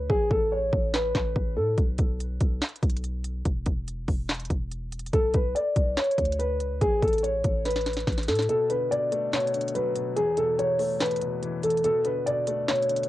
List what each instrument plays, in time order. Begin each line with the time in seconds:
0.10 808-style bass A1, grand piano G#4, kick
0.31 808-style bass A1, grand piano A4, kick
0.52 grand piano C#5
0.73 808-style bass A1, kick
0.94 grand piano B4, snare, clap
1.15 808-style bass A1, kick, snare, clap
1.36 808-style bass A1, kick
1.56 808-style bass A2, grand piano A4
1.78 808-style bass B1, kick, closed hi-hat
1.98 808-style bass B1, kick, closed hi-hat
2.20 closed hi-hat
2.40 808-style bass B1, kick, closed hi-hat
2.62 snare, clap, closed hi-hat
2.69 closed hi-hat
2.76 closed hi-hat
2.83 808-style bass B1, kick, closed hi-hat
2.90 closed hi-hat
2.97 closed hi-hat
3.04 closed hi-hat
3.24 closed hi-hat
3.45 808-style bass E1, kick, closed hi-hat
3.66 808-style bass E1, kick, closed hi-hat
3.88 closed hi-hat
4.08 808-style bass E1, kick, open hi-hat
4.29 snare, clap, closed hi-hat
4.35 closed hi-hat
4.40 closed hi-hat
4.45 closed hi-hat
4.50 808-style bass E1, kick, closed hi-hat
4.72 closed hi-hat
4.92 closed hi-hat
4.99 closed hi-hat
5.06 closed hi-hat
5.13 808-style bass B1, grand piano A4, kick, closed hi-hat
5.34 808-style bass B1, grand piano B4, kick, closed hi-hat
5.55 grand piano D5, closed hi-hat
5.76 808-style bass B1, kick, closed hi-hat
5.97 grand piano C#5, snare, clap, closed hi-hat
6.04 closed hi-hat
6.11 closed hi-hat
6.18 808-style bass D2, kick, closed hi-hat
6.25 closed hi-hat
6.32 closed hi-hat
6.39 grand piano B4, closed hi-hat
6.60 808-style bass C#2, closed hi-hat
6.71 808-style bass D2
6.81 808-style bass A1, grand piano G#4, kick, closed hi-hat
7.02 808-style bass A1, grand piano A4, kick, closed hi-hat
7.07 closed hi-hat
7.13 closed hi-hat
7.18 closed hi-hat
7.23 grand piano C#5, closed hi-hat
7.44 808-style bass A1, kick, closed hi-hat
7.65 grand piano B4, snare, closed hi-hat
7.70 closed hi-hat
7.76 snare, closed hi-hat
7.81 closed hi-hat
7.86 snare, closed hi-hat
7.93 snare, closed hi-hat
8.00 closed hi-hat
8.07 808-style bass A1, kick, snare, closed hi-hat
8.12 closed hi-hat
8.18 snare, closed hi-hat
8.23 closed hi-hat
8.28 808-style bass A2, grand piano A4, snare, closed hi-hat, open hi-hat
8.35 snare, closed hi-hat
8.42 closed hi-hat
8.49 felt piano B2, grand piano A4, closed hi-hat
8.70 felt piano D3, grand piano B4, closed hi-hat
8.91 felt piano B2, grand piano D5, closed hi-hat
9.12 felt piano A3, closed hi-hat
9.33 felt piano B2, grand piano C#5, snare, clap, closed hi-hat
9.40 closed hi-hat
9.47 closed hi-hat
9.54 felt piano D3, closed hi-hat
9.61 closed hi-hat
9.68 closed hi-hat
9.75 felt piano F#3, grand piano B4, closed hi-hat
9.96 felt piano B2, closed hi-hat
10.16 felt piano E2, grand piano G#4, closed hi-hat
10.37 felt piano B2, grand piano A4, closed hi-hat
10.59 felt piano E2, grand piano C#5, closed hi-hat
10.80 felt piano A3, open hi-hat
11.01 felt piano E2, grand piano B4, snare, clap, closed hi-hat
11.06 closed hi-hat
11.11 closed hi-hat
11.16 closed hi-hat
11.22 felt piano B2, closed hi-hat
11.43 felt piano E3, closed hi-hat
11.64 felt piano E2, grand piano A4, closed hi-hat
11.71 closed hi-hat
11.78 closed hi-hat
11.85 felt piano B2, grand piano A4, closed hi-hat
12.05 felt piano D3, grand piano B4, closed hi-hat
12.27 felt piano B2, grand piano D5, closed hi-hat
12.47 felt piano A3, closed hi-hat
12.68 felt piano B2, grand piano C#5, snare, clap, closed hi-hat
12.76 closed hi-hat
12.83 closed hi-hat
12.89 felt piano D3, closed hi-hat
12.96 closed hi-hat
13.03 closed hi-hat